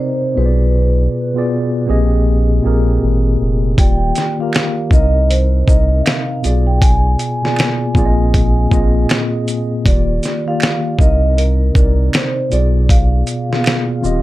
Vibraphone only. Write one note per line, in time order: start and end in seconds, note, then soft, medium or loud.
0.00 0.38 C5 medium
0.38 1.47 B4 medium
3.79 4.36 G5 medium
4.40 4.94 F5 medium
4.92 5.31 D#5 medium
5.30 5.69 C5 medium
5.68 6.01 D#5 medium
6.01 6.06 E5 medium
6.06 6.63 F5 medium
6.67 6.82 G5 loud
6.81 9.05 G#5 medium
9.86 10.49 D5 medium
10.48 11.01 F5 loud
10.99 11.38 D#5 medium
11.38 12.16 A#4 loud
12.14 12.53 C5 medium
12.52 12.91 D5 loud
12.90 14.22 F5 medium